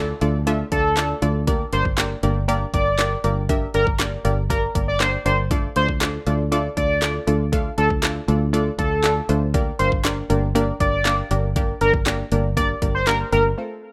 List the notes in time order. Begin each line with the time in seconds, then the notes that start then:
Already playing: D2 A3 D4 F4 A4 D5, downlifter
0.21 D2 A3 D4 F4 A4 D5, closed hi-hat
0.47 A3 D4 F4 A4 E5, closed hi-hat
0.72 D2 A3 D4 F4 A4 D5, kick, closed hi-hat
0.97 A3 D4 F4 A4 D5, snare, clap, closed hi-hat
1.22 D2 A3 D4 F4 A4 D5, closed hi-hat
1.47 A#3 D4 G4 A#4 D5, kick, closed hi-hat
1.73 G1 A#3 D4 G4 A#4 C5 D5, closed hi-hat
1.85 kick
1.98 A#3 D4 G4 A#4 D5, snare, clap, closed hi-hat
2.23 G1 A#3 D4 G4 A#4 D5, closed hi-hat
2.48 A#3 D4 G4 A#4 D5, closed hi-hat
2.74 G1 A#3 D4 G4 A#4 D5, kick, closed hi-hat
2.99 A#3 D4 G4 A#4 D5, snare, clap, closed hi-hat
3.24 G1 A#3 D4 G4 A#4 D5, closed hi-hat
3.49 A#3 D4 G4 A#4 E5, kick, closed hi-hat
3.74 G1 A#3 D4 G4 A#4 D5, closed hi-hat
3.87 kick
3.99 A#3 D4 G4 A#4 D5, snare, clap, closed hi-hat
4.25 G1 A#3 D4 G4 A#4 D5, closed hi-hat
4.50 A#3 D4 G4 A#4 D5, kick, closed hi-hat
4.75 G1 A#3 D4 G4 A#4 D5, kick, closed hi-hat
4.88 D5
5.00 A#3 D4 G4 A#4 C5 D5, snare, clap, closed hi-hat
5.25 G1 A#3 D4 G4 A#4 C5 D5, closed hi-hat
5.51 A3 D4 F4 A4 D5, kick, closed hi-hat
5.76 D2 A3 D4 F4 A4 C5 D5, closed hi-hat
5.89 kick
6.01 A3 D4 F4 A4 D5, snare, clap, closed hi-hat
6.27 D2 A3 D4 F4 A4 D5, closed hi-hat
6.52 A3 D4 F4 A4 D5, closed hi-hat
6.77 D2 A3 D4 F4 A4 D5, kick, closed hi-hat
7.02 A3 D4 F4 A4 D5, snare, clap, closed hi-hat
7.27 D2 A3 D4 F4 A4 D5, closed hi-hat
7.52 A3 D4 F4 A4 F5, kick, closed hi-hat
7.78 D2 A3 D4 F4 A4 D5, closed hi-hat
7.90 kick
8.03 A3 D4 F4 A4 D5, snare, clap, closed hi-hat
8.28 D2 A3 D4 F4 A4 D5, closed hi-hat
8.53 A3 D4 F4 A4 D5, closed hi-hat
8.78 D2 A3 D4 F4 A4 D5, kick, closed hi-hat
9.03 A3 D4 F4 A4 D5, snare, clap, closed hi-hat
9.29 D2 A3 D4 F4 A4 C5, closed hi-hat
9.54 A#3 D4 G4 A#4 D5, kick, closed hi-hat
9.79 G1 A#3 D4 G4 A#4 C5 F5, closed hi-hat
9.92 kick
10.04 A#3 D4 G4 A#4 D5, snare, clap, closed hi-hat
10.30 G1 A#3 D4 G4 A#4 D5, closed hi-hat
10.55 A#3 D4 G4 A#4 D5, closed hi-hat
10.80 G1 A#3 D4 G4 A#4 D5, kick, closed hi-hat
11.05 A#3 D4 G4 A#4 F5, snare, clap, closed hi-hat
11.31 G1 A#3 D4 G4 A#4 D5, closed hi-hat
11.56 A#3 D4 G4 A#4 D5, kick, closed hi-hat
11.81 G1 A#3 D4 G4 A#4 D5, closed hi-hat
11.94 kick
12.06 A#3 D4 G4 A#4 D5, snare, clap, closed hi-hat
12.32 G1 A#3 D4 G4 A#4 D5, closed hi-hat
12.57 A#3 D4 G4 A#4 D5, kick, closed hi-hat
12.82 G1 A#3 D4 G4 A#4 D5, kick, closed hi-hat
12.95 C5
13.07 A#3 D4 G4 A#4 D5, snare, clap, closed hi-hat
13.32 G1 A#3 D4 G4 A#4 E5, closed hi-hat
13.57 A3 C4 F4 A4